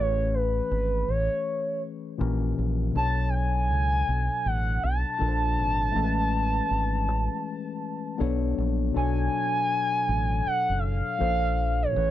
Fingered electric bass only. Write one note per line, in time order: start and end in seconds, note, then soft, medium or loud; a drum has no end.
0.00 0.60 A1 medium
0.71 1.03 G#1 medium
1.08 1.27 A1 medium
2.21 2.52 A#1 medium
2.59 2.90 A#1 medium
2.96 3.71 B1 loud
3.71 4.02 C#2 medium
4.09 4.28 B1 medium
4.46 4.77 A1 medium
4.84 5.03 B1 medium
5.21 5.59 A#1 loud
5.59 5.90 G#1 medium
5.96 6.60 A1 loud
6.71 7.08 G#1 medium
7.08 7.27 A1 medium
8.21 8.52 B1 medium
8.58 8.90 A#1 medium
8.96 9.28 B1 medium
10.09 10.40 A1 medium
10.46 muted fingered electric bass stroke soft
10.69 11.01 F#1 medium
11.21 11.85 A#1 medium
11.96 12.11 A1 medium